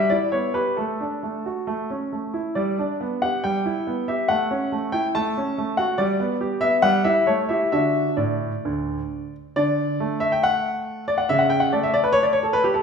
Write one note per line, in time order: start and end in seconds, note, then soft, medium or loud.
0.00 0.11 G3 medium
0.10 0.34 E4 soft
0.10 0.30 D5 medium
0.32 0.56 B3 soft
0.32 0.53 C#5 medium
0.54 0.78 G4 soft
0.54 0.75 B4 medium
0.77 1.00 A3 soft
0.77 1.71 A4 medium
1.01 1.24 D4 soft
1.23 1.46 A3 soft
1.46 1.68 F#4 soft
1.67 1.89 A3 soft
1.90 2.14 C#4 soft
2.12 2.36 A3 soft
2.34 2.56 E4 soft
2.55 2.78 G3 soft
2.55 2.95 D5 medium
2.79 3.02 D4 soft
3.01 3.24 B3 soft
3.22 3.44 G4 soft
3.22 3.44 F#5 medium
3.44 3.66 G3 medium
3.44 4.05 G5 medium
3.66 3.89 E4 soft
3.87 4.10 B3 soft
4.08 4.30 G4 soft
4.08 4.28 E5 medium
4.28 4.50 A3 soft
4.28 4.92 F#5 medium
4.51 4.73 C#4 soft
4.72 4.94 A3 soft
4.92 5.15 E4 soft
4.92 5.06 G5 medium
5.15 5.36 A3 medium
5.15 5.79 A5 medium
5.37 5.59 C#4 soft
5.58 5.80 A3 soft
5.77 5.99 F#4 soft
5.77 5.99 F#5 medium
5.98 6.19 G3 medium
5.98 6.36 D5 medium
6.20 6.42 B3 medium
6.41 6.63 G4 soft
6.61 6.83 B3 soft
6.61 6.74 E5 medium
6.82 7.04 G3 medium
6.82 7.05 F#5 medium
7.04 7.21 E4 soft
7.04 7.21 G4 soft
7.04 7.27 E5 medium
7.27 7.49 A3 medium
7.27 7.40 C#5 medium
7.49 7.66 E4 soft
7.49 7.66 G4 soft
7.49 7.71 E5 medium
7.72 8.05 D3 soft
7.72 8.10 D4 soft
7.72 8.09 F#4 soft
7.72 8.15 E5 medium
8.17 8.50 A2 soft
8.17 9.32 D5 soft
8.65 8.97 D2 soft
9.56 9.99 D3 medium
9.56 10.18 D5 medium
10.00 11.30 A3 soft
10.20 10.32 E5 medium
10.32 10.43 G5 medium
10.43 11.04 F#5 medium
11.08 11.19 D5 medium
11.18 11.29 F#5 medium
11.29 11.71 C#3 medium
11.29 11.40 E5 medium
11.39 11.50 F#5 medium
11.50 11.61 G5 medium
11.60 11.71 F#5 medium
11.73 12.83 A3 soft
11.73 11.83 D5 medium
11.83 11.93 E5 medium
11.94 12.04 D5 medium
12.04 12.14 B4 medium
12.13 12.24 C#5 loud
12.23 12.34 D5 medium
12.33 12.44 C#5 medium
12.43 12.54 A4 medium
12.53 12.65 B4 medium
12.64 12.75 G4 medium
12.74 12.83 A4 medium